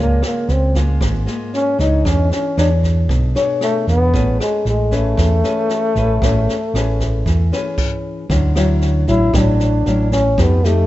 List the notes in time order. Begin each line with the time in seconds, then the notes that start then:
Already playing: C#2 C#3 G#3
0.00 A#3 F4
0.22 A#3, cross-stick, snare
0.48 C#2 C4, snare
0.75 G#3 A#3 F4, kick, snare
1.01 G#1 G#2, kick, cross-stick, snare
1.26 G#3 A#3 F4, snare
1.53 C#4, snare
1.78 C#2 D4 D#4 G#4 C#5, kick, snare
2.05 E2 E3 C#4, kick, cross-stick, snare
2.31 C#4, snare
2.57 E2 D4 G#4 C#5, cross-stick, snare
2.83 kick, snare
3.09 B1 B2, kick, snare
3.35 D4 G#4 C#5, snare
3.61 A3, cross-stick, snare
3.87 E2 B3, kick, snare
4.13 A1 A3 C#4 G#4 B4, kick, snare
4.40 G#3, cross-stick, snare
4.65 A1 G#3, snare
4.91 A3 C#4 G#4 B4, kick, snare
5.17 E2 E3, kick, cross-stick, snare
5.44 C#4 G#4 B4, snare
5.69 snare
5.95 A1 C#4 G#4 B4, kick, snare
6.22 A1 A3 C#4 G#4 B4, kick, cross-stick, snare
6.49 snare
6.74 A1 C#4 G#4 B4, cross-stick, snare
7.00 kick, snare
7.26 E2 E3, kick, snare
7.52 C#4 G#4 B4, snare
7.78 kick, crash
8.29 D2 D3 F#3 C#4 E4, kick, snare
8.55 F#3 C#4 E4, cross-stick, snare
8.81 snare
9.07 A1 F#3 C#4 E4, kick, snare
9.33 A1 A2 F#3 D4 E4, kick, cross-stick, snare
9.60 snare
9.86 A1 F#3 C#4 E4, snare
10.12 C#4, kick, snare
10.38 F2 F3 A3 B3 D#4 G4, kick, cross-stick, snare
10.64 A3 D#4 G4, snare